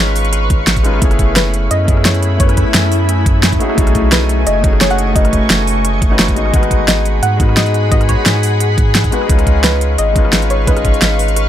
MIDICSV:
0, 0, Header, 1, 6, 480
1, 0, Start_track
1, 0, Tempo, 344828
1, 1418, Time_signature, 4, 2, 24, 8
1, 15991, End_track
2, 0, Start_track
2, 0, Title_t, "Ambient pad"
2, 0, Program_c, 0, 92
2, 0, Note_on_c, 0, 71, 80
2, 0, Note_on_c, 0, 77, 72
2, 0, Note_on_c, 0, 85, 88
2, 1380, Note_off_c, 0, 71, 0
2, 1380, Note_off_c, 0, 77, 0
2, 1380, Note_off_c, 0, 85, 0
2, 1420, Note_on_c, 0, 80, 71
2, 1421, Note_on_c, 0, 64, 70
2, 1421, Note_on_c, 0, 83, 90
2, 1422, Note_on_c, 0, 57, 82
2, 4983, Note_off_c, 0, 64, 0
2, 4984, Note_off_c, 0, 83, 0
2, 5022, Note_on_c, 0, 85, 92
2, 5023, Note_on_c, 0, 75, 78
2, 8804, Note_off_c, 0, 57, 0
2, 8804, Note_off_c, 0, 80, 0
2, 8821, Note_off_c, 0, 85, 0
2, 8822, Note_off_c, 0, 75, 0
2, 8857, Note_on_c, 0, 78, 76
2, 8858, Note_on_c, 0, 68, 83
2, 8860, Note_on_c, 0, 83, 92
2, 12897, Note_off_c, 0, 68, 0
2, 12897, Note_off_c, 0, 78, 0
2, 12898, Note_off_c, 0, 83, 0
2, 12938, Note_on_c, 0, 77, 70
2, 12940, Note_on_c, 0, 71, 82
2, 12940, Note_on_c, 0, 85, 86
2, 15991, Note_off_c, 0, 71, 0
2, 15991, Note_off_c, 0, 77, 0
2, 15991, Note_off_c, 0, 85, 0
2, 15991, End_track
3, 0, Start_track
3, 0, Title_t, "Synth pluck"
3, 0, Program_c, 1, 84
3, 0, Note_on_c, 1, 73, 94
3, 165, Note_off_c, 1, 73, 0
3, 1900, Note_on_c, 1, 71, 93
3, 2345, Note_off_c, 1, 71, 0
3, 2379, Note_on_c, 1, 75, 113
3, 2825, Note_off_c, 1, 75, 0
3, 2858, Note_on_c, 1, 73, 98
3, 3304, Note_off_c, 1, 73, 0
3, 3341, Note_on_c, 1, 73, 97
3, 3582, Note_on_c, 1, 71, 88
3, 3587, Note_off_c, 1, 73, 0
3, 4965, Note_off_c, 1, 71, 0
3, 5739, Note_on_c, 1, 71, 83
3, 6218, Note_on_c, 1, 75, 103
3, 6233, Note_off_c, 1, 71, 0
3, 6665, Note_off_c, 1, 75, 0
3, 6700, Note_on_c, 1, 73, 100
3, 6829, Note_on_c, 1, 78, 113
3, 6830, Note_off_c, 1, 73, 0
3, 7155, Note_off_c, 1, 78, 0
3, 7178, Note_on_c, 1, 75, 89
3, 7847, Note_off_c, 1, 75, 0
3, 9581, Note_on_c, 1, 75, 98
3, 10026, Note_off_c, 1, 75, 0
3, 10058, Note_on_c, 1, 78, 108
3, 10538, Note_on_c, 1, 75, 98
3, 10553, Note_off_c, 1, 78, 0
3, 11001, Note_off_c, 1, 75, 0
3, 11018, Note_on_c, 1, 75, 102
3, 11241, Note_off_c, 1, 75, 0
3, 11259, Note_on_c, 1, 73, 85
3, 12643, Note_off_c, 1, 73, 0
3, 13416, Note_on_c, 1, 71, 95
3, 13900, Note_on_c, 1, 75, 113
3, 13912, Note_off_c, 1, 71, 0
3, 14623, Note_on_c, 1, 73, 102
3, 14641, Note_off_c, 1, 75, 0
3, 14863, Note_on_c, 1, 71, 82
3, 14868, Note_off_c, 1, 73, 0
3, 15991, Note_off_c, 1, 71, 0
3, 15991, End_track
4, 0, Start_track
4, 0, Title_t, "Grand piano"
4, 0, Program_c, 2, 0
4, 0, Control_c, 2, 64, 127
4, 0, Note_on_c, 2, 56, 76
4, 0, Note_on_c, 2, 61, 70
4, 0, Note_on_c, 2, 63, 67
4, 0, Note_on_c, 2, 65, 66
4, 0, Note_on_c, 2, 71, 87
4, 0, Note_on_c, 2, 75, 83
4, 1131, Note_off_c, 2, 56, 0
4, 1140, Note_off_c, 2, 61, 0
4, 1150, Note_off_c, 2, 63, 0
4, 1157, Note_on_c, 2, 56, 80
4, 1161, Note_off_c, 2, 65, 0
4, 1168, Note_on_c, 2, 61, 77
4, 1170, Note_off_c, 2, 75, 0
4, 1177, Note_on_c, 2, 63, 73
4, 1187, Note_on_c, 2, 65, 75
4, 1197, Note_off_c, 2, 71, 0
4, 1197, Note_on_c, 2, 71, 87
4, 1377, Note_on_c, 2, 57, 86
4, 1381, Note_off_c, 2, 56, 0
4, 1386, Note_off_c, 2, 61, 0
4, 1390, Note_off_c, 2, 63, 0
4, 1395, Note_off_c, 2, 65, 0
4, 1397, Note_on_c, 2, 59, 77
4, 1400, Note_off_c, 2, 71, 0
4, 1416, Note_on_c, 2, 61, 81
4, 1435, Control_c, 2, 64, 0
4, 1437, Note_on_c, 2, 64, 81
4, 1456, Note_on_c, 2, 68, 96
4, 1693, Control_c, 2, 64, 127
4, 2556, Note_off_c, 2, 57, 0
4, 2576, Note_off_c, 2, 59, 0
4, 2577, Note_on_c, 2, 57, 78
4, 2590, Note_off_c, 2, 61, 0
4, 2597, Note_on_c, 2, 59, 69
4, 2600, Note_off_c, 2, 64, 0
4, 2610, Note_off_c, 2, 68, 0
4, 2616, Note_on_c, 2, 61, 73
4, 2637, Note_on_c, 2, 64, 74
4, 2656, Note_on_c, 2, 68, 88
4, 3279, Note_off_c, 2, 57, 0
4, 3297, Note_off_c, 2, 59, 0
4, 3300, Note_on_c, 2, 57, 76
4, 3310, Note_off_c, 2, 61, 0
4, 3318, Note_on_c, 2, 59, 68
4, 3320, Note_off_c, 2, 64, 0
4, 3330, Note_off_c, 2, 68, 0
4, 3338, Note_on_c, 2, 61, 71
4, 3358, Note_on_c, 2, 64, 69
4, 3378, Note_on_c, 2, 71, 82
4, 4972, Note_off_c, 2, 57, 0
4, 4981, Note_off_c, 2, 59, 0
4, 4987, Note_off_c, 2, 61, 0
4, 4999, Note_on_c, 2, 57, 81
4, 5001, Note_off_c, 2, 64, 0
4, 5008, Note_on_c, 2, 61, 74
4, 5011, Note_off_c, 2, 71, 0
4, 5018, Note_on_c, 2, 63, 72
4, 5028, Note_on_c, 2, 66, 79
4, 5035, Control_c, 2, 64, 0
4, 5037, Note_on_c, 2, 68, 92
4, 5197, Note_off_c, 2, 57, 0
4, 5218, Note_off_c, 2, 61, 0
4, 5218, Note_on_c, 2, 57, 88
4, 5231, Note_off_c, 2, 63, 0
4, 5236, Note_off_c, 2, 66, 0
4, 5239, Note_on_c, 2, 61, 77
4, 5241, Note_off_c, 2, 68, 0
4, 5242, Control_c, 2, 64, 127
4, 5258, Note_on_c, 2, 63, 83
4, 5277, Note_on_c, 2, 66, 81
4, 5297, Note_on_c, 2, 68, 98
4, 6397, Note_off_c, 2, 57, 0
4, 6417, Note_off_c, 2, 61, 0
4, 6418, Note_on_c, 2, 57, 81
4, 6431, Note_off_c, 2, 63, 0
4, 6438, Note_on_c, 2, 61, 73
4, 6440, Note_off_c, 2, 66, 0
4, 6450, Note_off_c, 2, 68, 0
4, 6456, Note_on_c, 2, 63, 74
4, 6477, Note_on_c, 2, 66, 72
4, 6497, Note_on_c, 2, 68, 92
4, 7114, Note_off_c, 2, 57, 0
4, 7135, Note_off_c, 2, 61, 0
4, 7135, Note_on_c, 2, 57, 77
4, 7150, Note_off_c, 2, 63, 0
4, 7156, Note_on_c, 2, 61, 70
4, 7160, Note_off_c, 2, 66, 0
4, 7171, Note_off_c, 2, 68, 0
4, 7175, Note_on_c, 2, 63, 71
4, 7195, Note_on_c, 2, 66, 70
4, 7215, Note_on_c, 2, 71, 83
4, 8458, Note_off_c, 2, 57, 0
4, 8469, Note_off_c, 2, 61, 0
4, 8479, Note_off_c, 2, 63, 0
4, 8483, Note_on_c, 2, 57, 77
4, 8488, Note_off_c, 2, 66, 0
4, 8494, Note_on_c, 2, 61, 76
4, 8498, Note_off_c, 2, 71, 0
4, 8502, Note_on_c, 2, 63, 75
4, 8513, Note_on_c, 2, 66, 74
4, 8522, Note_on_c, 2, 71, 85
4, 8820, Note_off_c, 2, 57, 0
4, 8825, Note_off_c, 2, 61, 0
4, 8829, Note_off_c, 2, 63, 0
4, 8835, Note_off_c, 2, 66, 0
4, 8837, Note_on_c, 2, 56, 73
4, 8839, Note_off_c, 2, 71, 0
4, 8847, Note_on_c, 2, 59, 65
4, 8857, Note_on_c, 2, 63, 69
4, 8867, Note_on_c, 2, 66, 68
4, 8877, Note_on_c, 2, 75, 81
4, 8878, Control_c, 2, 64, 0
4, 9036, Note_off_c, 2, 56, 0
4, 9057, Note_off_c, 2, 59, 0
4, 9057, Note_on_c, 2, 56, 88
4, 9070, Note_off_c, 2, 63, 0
4, 9076, Note_off_c, 2, 66, 0
4, 9077, Control_c, 2, 64, 127
4, 9078, Note_on_c, 2, 59, 80
4, 9080, Note_off_c, 2, 75, 0
4, 9097, Note_on_c, 2, 63, 81
4, 9116, Note_on_c, 2, 66, 84
4, 9135, Note_on_c, 2, 71, 97
4, 10239, Note_off_c, 2, 56, 0
4, 10257, Note_off_c, 2, 59, 0
4, 10260, Note_on_c, 2, 56, 80
4, 10270, Note_off_c, 2, 63, 0
4, 10278, Note_on_c, 2, 59, 72
4, 10280, Note_off_c, 2, 66, 0
4, 10290, Note_off_c, 2, 71, 0
4, 10298, Note_on_c, 2, 63, 76
4, 10318, Note_on_c, 2, 66, 72
4, 10338, Note_on_c, 2, 71, 87
4, 10960, Note_off_c, 2, 56, 0
4, 10978, Note_off_c, 2, 59, 0
4, 10981, Note_on_c, 2, 56, 77
4, 10991, Note_off_c, 2, 63, 0
4, 10999, Note_on_c, 2, 59, 70
4, 11001, Note_off_c, 2, 66, 0
4, 11011, Note_off_c, 2, 71, 0
4, 11019, Note_on_c, 2, 63, 68
4, 11039, Note_on_c, 2, 66, 70
4, 11059, Note_on_c, 2, 75, 81
4, 12652, Note_off_c, 2, 56, 0
4, 12661, Note_off_c, 2, 59, 0
4, 12671, Note_off_c, 2, 63, 0
4, 12679, Note_on_c, 2, 56, 87
4, 12682, Note_off_c, 2, 66, 0
4, 12688, Note_on_c, 2, 59, 75
4, 12691, Note_off_c, 2, 75, 0
4, 12697, Note_on_c, 2, 63, 71
4, 12708, Note_on_c, 2, 66, 72
4, 12718, Note_on_c, 2, 71, 94
4, 12877, Note_off_c, 2, 56, 0
4, 12898, Note_on_c, 2, 56, 92
4, 12906, Note_off_c, 2, 59, 0
4, 12911, Note_off_c, 2, 63, 0
4, 12916, Note_off_c, 2, 66, 0
4, 12917, Note_on_c, 2, 61, 84
4, 12921, Note_off_c, 2, 71, 0
4, 12937, Note_on_c, 2, 63, 83
4, 12958, Note_on_c, 2, 65, 82
4, 12959, Control_c, 2, 64, 0
4, 12976, Note_on_c, 2, 71, 95
4, 13166, Control_c, 2, 64, 127
4, 14079, Note_off_c, 2, 56, 0
4, 14100, Note_off_c, 2, 61, 0
4, 14100, Note_on_c, 2, 56, 79
4, 14110, Note_off_c, 2, 63, 0
4, 14121, Note_off_c, 2, 65, 0
4, 14121, Note_on_c, 2, 61, 70
4, 14130, Note_off_c, 2, 71, 0
4, 14139, Note_on_c, 2, 63, 73
4, 14159, Note_on_c, 2, 65, 77
4, 14179, Note_on_c, 2, 71, 85
4, 14801, Note_off_c, 2, 56, 0
4, 14820, Note_off_c, 2, 61, 0
4, 14821, Note_on_c, 2, 56, 76
4, 14831, Note_off_c, 2, 63, 0
4, 14841, Note_on_c, 2, 61, 70
4, 14842, Note_off_c, 2, 65, 0
4, 14852, Note_off_c, 2, 71, 0
4, 14860, Note_on_c, 2, 63, 72
4, 14879, Note_on_c, 2, 65, 67
4, 14901, Note_on_c, 2, 75, 86
4, 15991, Note_off_c, 2, 56, 0
4, 15991, Note_off_c, 2, 61, 0
4, 15991, Note_off_c, 2, 63, 0
4, 15991, Note_off_c, 2, 65, 0
4, 15991, Note_off_c, 2, 75, 0
4, 15991, End_track
5, 0, Start_track
5, 0, Title_t, "Sub bass"
5, 0, Program_c, 3, 38
5, 0, Note_on_c, 3, 32, 97
5, 1159, Note_off_c, 3, 32, 0
5, 1177, Note_on_c, 3, 32, 102
5, 1395, Note_off_c, 3, 32, 0
5, 1417, Note_on_c, 3, 30, 103
5, 2359, Note_off_c, 3, 30, 0
5, 2379, Note_on_c, 3, 42, 101
5, 3685, Note_off_c, 3, 42, 0
5, 3819, Note_on_c, 3, 42, 100
5, 5000, Note_off_c, 3, 42, 0
5, 5258, Note_on_c, 3, 35, 102
5, 6200, Note_off_c, 3, 35, 0
5, 6218, Note_on_c, 3, 30, 99
5, 7525, Note_off_c, 3, 30, 0
5, 7657, Note_on_c, 3, 30, 99
5, 8608, Note_off_c, 3, 30, 0
5, 8616, Note_on_c, 3, 30, 79
5, 8856, Note_on_c, 3, 32, 89
5, 8877, Note_off_c, 3, 30, 0
5, 9075, Note_off_c, 3, 32, 0
5, 9098, Note_on_c, 3, 32, 100
5, 10040, Note_off_c, 3, 32, 0
5, 10058, Note_on_c, 3, 44, 101
5, 11365, Note_off_c, 3, 44, 0
5, 11499, Note_on_c, 3, 44, 98
5, 12680, Note_off_c, 3, 44, 0
5, 12938, Note_on_c, 3, 37, 100
5, 13880, Note_off_c, 3, 37, 0
5, 13897, Note_on_c, 3, 32, 101
5, 15204, Note_off_c, 3, 32, 0
5, 15338, Note_on_c, 3, 32, 99
5, 15991, Note_off_c, 3, 32, 0
5, 15991, End_track
6, 0, Start_track
6, 0, Title_t, "Drums"
6, 217, Note_on_c, 9, 46, 81
6, 343, Note_on_c, 9, 42, 39
6, 356, Note_off_c, 9, 46, 0
6, 455, Note_off_c, 9, 42, 0
6, 455, Note_on_c, 9, 37, 36
6, 455, Note_on_c, 9, 42, 101
6, 594, Note_off_c, 9, 37, 0
6, 594, Note_off_c, 9, 42, 0
6, 697, Note_on_c, 9, 36, 103
6, 697, Note_on_c, 9, 42, 71
6, 836, Note_off_c, 9, 42, 0
6, 837, Note_off_c, 9, 36, 0
6, 936, Note_on_c, 9, 38, 105
6, 936, Note_on_c, 9, 42, 94
6, 1064, Note_on_c, 9, 36, 63
6, 1065, Note_off_c, 9, 42, 0
6, 1065, Note_on_c, 9, 42, 37
6, 1075, Note_off_c, 9, 38, 0
6, 1176, Note_off_c, 9, 42, 0
6, 1176, Note_on_c, 9, 42, 68
6, 1204, Note_off_c, 9, 36, 0
6, 1304, Note_on_c, 9, 37, 35
6, 1315, Note_off_c, 9, 42, 0
6, 1417, Note_on_c, 9, 36, 118
6, 1417, Note_on_c, 9, 42, 96
6, 1443, Note_off_c, 9, 37, 0
6, 1544, Note_off_c, 9, 42, 0
6, 1544, Note_on_c, 9, 37, 52
6, 1544, Note_on_c, 9, 42, 39
6, 1557, Note_off_c, 9, 36, 0
6, 1657, Note_off_c, 9, 42, 0
6, 1657, Note_on_c, 9, 36, 62
6, 1657, Note_on_c, 9, 42, 71
6, 1683, Note_off_c, 9, 37, 0
6, 1797, Note_off_c, 9, 36, 0
6, 1797, Note_off_c, 9, 42, 0
6, 1897, Note_on_c, 9, 38, 121
6, 1897, Note_on_c, 9, 42, 99
6, 2036, Note_off_c, 9, 38, 0
6, 2036, Note_off_c, 9, 42, 0
6, 2139, Note_on_c, 9, 42, 72
6, 2278, Note_off_c, 9, 42, 0
6, 2378, Note_on_c, 9, 42, 104
6, 2517, Note_off_c, 9, 42, 0
6, 2618, Note_on_c, 9, 36, 105
6, 2618, Note_on_c, 9, 42, 76
6, 2745, Note_on_c, 9, 37, 39
6, 2757, Note_off_c, 9, 36, 0
6, 2757, Note_off_c, 9, 42, 0
6, 2857, Note_on_c, 9, 38, 113
6, 2857, Note_on_c, 9, 42, 95
6, 2884, Note_off_c, 9, 37, 0
6, 2986, Note_off_c, 9, 42, 0
6, 2986, Note_on_c, 9, 42, 37
6, 2997, Note_off_c, 9, 38, 0
6, 3098, Note_off_c, 9, 42, 0
6, 3098, Note_on_c, 9, 42, 71
6, 3237, Note_off_c, 9, 42, 0
6, 3339, Note_on_c, 9, 36, 116
6, 3339, Note_on_c, 9, 42, 94
6, 3466, Note_off_c, 9, 42, 0
6, 3466, Note_on_c, 9, 37, 52
6, 3466, Note_on_c, 9, 42, 38
6, 3478, Note_off_c, 9, 36, 0
6, 3579, Note_on_c, 9, 36, 64
6, 3580, Note_off_c, 9, 42, 0
6, 3580, Note_on_c, 9, 42, 64
6, 3606, Note_off_c, 9, 37, 0
6, 3718, Note_off_c, 9, 36, 0
6, 3719, Note_off_c, 9, 42, 0
6, 3819, Note_on_c, 9, 38, 125
6, 3819, Note_on_c, 9, 42, 94
6, 3958, Note_off_c, 9, 38, 0
6, 3958, Note_off_c, 9, 42, 0
6, 4059, Note_on_c, 9, 46, 74
6, 4198, Note_off_c, 9, 46, 0
6, 4299, Note_on_c, 9, 42, 98
6, 4438, Note_off_c, 9, 42, 0
6, 4539, Note_on_c, 9, 36, 108
6, 4540, Note_on_c, 9, 42, 72
6, 4678, Note_off_c, 9, 36, 0
6, 4680, Note_off_c, 9, 42, 0
6, 4779, Note_on_c, 9, 38, 117
6, 4779, Note_on_c, 9, 42, 91
6, 4906, Note_off_c, 9, 42, 0
6, 4906, Note_on_c, 9, 36, 66
6, 4906, Note_on_c, 9, 42, 37
6, 4918, Note_off_c, 9, 38, 0
6, 5018, Note_off_c, 9, 42, 0
6, 5018, Note_on_c, 9, 42, 67
6, 5045, Note_off_c, 9, 36, 0
6, 5146, Note_on_c, 9, 37, 39
6, 5157, Note_off_c, 9, 42, 0
6, 5259, Note_on_c, 9, 36, 126
6, 5259, Note_on_c, 9, 42, 90
6, 5285, Note_off_c, 9, 37, 0
6, 5386, Note_off_c, 9, 42, 0
6, 5386, Note_on_c, 9, 37, 48
6, 5386, Note_on_c, 9, 42, 38
6, 5398, Note_off_c, 9, 36, 0
6, 5497, Note_off_c, 9, 42, 0
6, 5497, Note_on_c, 9, 42, 62
6, 5499, Note_on_c, 9, 36, 63
6, 5525, Note_off_c, 9, 37, 0
6, 5637, Note_off_c, 9, 42, 0
6, 5638, Note_off_c, 9, 36, 0
6, 5737, Note_on_c, 9, 38, 125
6, 5737, Note_on_c, 9, 42, 91
6, 5876, Note_off_c, 9, 38, 0
6, 5876, Note_off_c, 9, 42, 0
6, 5977, Note_on_c, 9, 42, 69
6, 6116, Note_off_c, 9, 42, 0
6, 6217, Note_on_c, 9, 42, 95
6, 6356, Note_off_c, 9, 42, 0
6, 6457, Note_on_c, 9, 42, 67
6, 6458, Note_on_c, 9, 36, 107
6, 6585, Note_on_c, 9, 37, 39
6, 6596, Note_off_c, 9, 42, 0
6, 6597, Note_off_c, 9, 36, 0
6, 6698, Note_on_c, 9, 38, 117
6, 6698, Note_on_c, 9, 42, 86
6, 6724, Note_off_c, 9, 37, 0
6, 6826, Note_off_c, 9, 42, 0
6, 6826, Note_on_c, 9, 42, 35
6, 6837, Note_off_c, 9, 38, 0
6, 6939, Note_off_c, 9, 42, 0
6, 6939, Note_on_c, 9, 42, 65
6, 7078, Note_off_c, 9, 42, 0
6, 7177, Note_on_c, 9, 36, 114
6, 7178, Note_on_c, 9, 42, 86
6, 7305, Note_off_c, 9, 42, 0
6, 7305, Note_on_c, 9, 37, 48
6, 7305, Note_on_c, 9, 42, 37
6, 7316, Note_off_c, 9, 36, 0
6, 7417, Note_on_c, 9, 36, 65
6, 7419, Note_off_c, 9, 42, 0
6, 7419, Note_on_c, 9, 42, 62
6, 7444, Note_off_c, 9, 37, 0
6, 7556, Note_off_c, 9, 36, 0
6, 7558, Note_off_c, 9, 42, 0
6, 7659, Note_on_c, 9, 38, 125
6, 7659, Note_on_c, 9, 42, 91
6, 7798, Note_off_c, 9, 38, 0
6, 7798, Note_off_c, 9, 42, 0
6, 7898, Note_on_c, 9, 46, 83
6, 8037, Note_off_c, 9, 46, 0
6, 8138, Note_on_c, 9, 37, 34
6, 8138, Note_on_c, 9, 42, 94
6, 8277, Note_off_c, 9, 37, 0
6, 8277, Note_off_c, 9, 42, 0
6, 8377, Note_on_c, 9, 36, 103
6, 8378, Note_on_c, 9, 42, 67
6, 8517, Note_off_c, 9, 36, 0
6, 8517, Note_off_c, 9, 42, 0
6, 8619, Note_on_c, 9, 38, 118
6, 8619, Note_on_c, 9, 42, 82
6, 8745, Note_on_c, 9, 36, 68
6, 8747, Note_off_c, 9, 42, 0
6, 8747, Note_on_c, 9, 42, 34
6, 8758, Note_off_c, 9, 38, 0
6, 8860, Note_off_c, 9, 42, 0
6, 8860, Note_on_c, 9, 42, 64
6, 8884, Note_off_c, 9, 36, 0
6, 8987, Note_on_c, 9, 37, 35
6, 8999, Note_off_c, 9, 42, 0
6, 9098, Note_on_c, 9, 36, 115
6, 9098, Note_on_c, 9, 42, 91
6, 9126, Note_off_c, 9, 37, 0
6, 9227, Note_off_c, 9, 42, 0
6, 9227, Note_on_c, 9, 37, 48
6, 9227, Note_on_c, 9, 42, 37
6, 9237, Note_off_c, 9, 36, 0
6, 9338, Note_on_c, 9, 36, 65
6, 9340, Note_off_c, 9, 42, 0
6, 9340, Note_on_c, 9, 42, 62
6, 9366, Note_off_c, 9, 37, 0
6, 9477, Note_off_c, 9, 36, 0
6, 9480, Note_off_c, 9, 42, 0
6, 9581, Note_on_c, 9, 38, 119
6, 9581, Note_on_c, 9, 42, 87
6, 9720, Note_off_c, 9, 38, 0
6, 9720, Note_off_c, 9, 42, 0
6, 9820, Note_on_c, 9, 42, 67
6, 9959, Note_off_c, 9, 42, 0
6, 10059, Note_on_c, 9, 42, 93
6, 10199, Note_off_c, 9, 42, 0
6, 10298, Note_on_c, 9, 42, 67
6, 10299, Note_on_c, 9, 36, 103
6, 10426, Note_on_c, 9, 37, 36
6, 10438, Note_off_c, 9, 36, 0
6, 10438, Note_off_c, 9, 42, 0
6, 10538, Note_on_c, 9, 38, 114
6, 10538, Note_on_c, 9, 42, 86
6, 10565, Note_off_c, 9, 37, 0
6, 10665, Note_off_c, 9, 42, 0
6, 10665, Note_on_c, 9, 42, 35
6, 10677, Note_off_c, 9, 38, 0
6, 10779, Note_off_c, 9, 42, 0
6, 10779, Note_on_c, 9, 42, 62
6, 10918, Note_off_c, 9, 42, 0
6, 11019, Note_on_c, 9, 36, 111
6, 11019, Note_on_c, 9, 42, 91
6, 11147, Note_off_c, 9, 42, 0
6, 11147, Note_on_c, 9, 37, 48
6, 11147, Note_on_c, 9, 42, 36
6, 11158, Note_off_c, 9, 36, 0
6, 11259, Note_off_c, 9, 42, 0
6, 11259, Note_on_c, 9, 36, 58
6, 11259, Note_on_c, 9, 42, 67
6, 11286, Note_off_c, 9, 37, 0
6, 11398, Note_off_c, 9, 36, 0
6, 11399, Note_off_c, 9, 42, 0
6, 11498, Note_on_c, 9, 38, 114
6, 11498, Note_on_c, 9, 42, 98
6, 11637, Note_off_c, 9, 38, 0
6, 11637, Note_off_c, 9, 42, 0
6, 11737, Note_on_c, 9, 46, 86
6, 11877, Note_off_c, 9, 46, 0
6, 11977, Note_on_c, 9, 42, 95
6, 12117, Note_off_c, 9, 42, 0
6, 12218, Note_on_c, 9, 36, 105
6, 12219, Note_on_c, 9, 42, 68
6, 12357, Note_off_c, 9, 36, 0
6, 12358, Note_off_c, 9, 42, 0
6, 12459, Note_on_c, 9, 38, 109
6, 12459, Note_on_c, 9, 42, 87
6, 12585, Note_on_c, 9, 36, 64
6, 12586, Note_off_c, 9, 42, 0
6, 12586, Note_on_c, 9, 42, 36
6, 12598, Note_off_c, 9, 38, 0
6, 12699, Note_off_c, 9, 42, 0
6, 12699, Note_on_c, 9, 42, 68
6, 12724, Note_off_c, 9, 36, 0
6, 12826, Note_on_c, 9, 37, 33
6, 12838, Note_off_c, 9, 42, 0
6, 12938, Note_on_c, 9, 36, 110
6, 12938, Note_on_c, 9, 42, 93
6, 12965, Note_off_c, 9, 37, 0
6, 13067, Note_off_c, 9, 42, 0
6, 13067, Note_on_c, 9, 37, 49
6, 13067, Note_on_c, 9, 42, 40
6, 13077, Note_off_c, 9, 36, 0
6, 13177, Note_on_c, 9, 36, 61
6, 13179, Note_off_c, 9, 42, 0
6, 13179, Note_on_c, 9, 42, 67
6, 13206, Note_off_c, 9, 37, 0
6, 13317, Note_off_c, 9, 36, 0
6, 13318, Note_off_c, 9, 42, 0
6, 13418, Note_on_c, 9, 38, 115
6, 13418, Note_on_c, 9, 42, 93
6, 13557, Note_off_c, 9, 38, 0
6, 13557, Note_off_c, 9, 42, 0
6, 13659, Note_on_c, 9, 42, 68
6, 13798, Note_off_c, 9, 42, 0
6, 13898, Note_on_c, 9, 42, 98
6, 14037, Note_off_c, 9, 42, 0
6, 14138, Note_on_c, 9, 36, 98
6, 14139, Note_on_c, 9, 42, 71
6, 14266, Note_on_c, 9, 37, 37
6, 14277, Note_off_c, 9, 36, 0
6, 14278, Note_off_c, 9, 42, 0
6, 14377, Note_on_c, 9, 38, 113
6, 14377, Note_on_c, 9, 42, 90
6, 14405, Note_off_c, 9, 37, 0
6, 14506, Note_off_c, 9, 42, 0
6, 14506, Note_on_c, 9, 42, 37
6, 14516, Note_off_c, 9, 38, 0
6, 14618, Note_off_c, 9, 42, 0
6, 14618, Note_on_c, 9, 42, 71
6, 14757, Note_off_c, 9, 42, 0
6, 14858, Note_on_c, 9, 36, 114
6, 14859, Note_on_c, 9, 42, 95
6, 14986, Note_off_c, 9, 42, 0
6, 14986, Note_on_c, 9, 37, 51
6, 14986, Note_on_c, 9, 42, 40
6, 14997, Note_off_c, 9, 36, 0
6, 15098, Note_on_c, 9, 36, 60
6, 15099, Note_off_c, 9, 42, 0
6, 15099, Note_on_c, 9, 42, 69
6, 15125, Note_off_c, 9, 37, 0
6, 15227, Note_off_c, 9, 42, 0
6, 15227, Note_on_c, 9, 42, 35
6, 15237, Note_off_c, 9, 36, 0
6, 15338, Note_off_c, 9, 42, 0
6, 15338, Note_on_c, 9, 38, 114
6, 15338, Note_on_c, 9, 42, 97
6, 15477, Note_off_c, 9, 38, 0
6, 15477, Note_off_c, 9, 42, 0
6, 15579, Note_on_c, 9, 46, 80
6, 15706, Note_on_c, 9, 42, 40
6, 15718, Note_off_c, 9, 46, 0
6, 15820, Note_off_c, 9, 42, 0
6, 15820, Note_on_c, 9, 37, 37
6, 15820, Note_on_c, 9, 42, 100
6, 15959, Note_off_c, 9, 37, 0
6, 15959, Note_off_c, 9, 42, 0
6, 15991, End_track
0, 0, End_of_file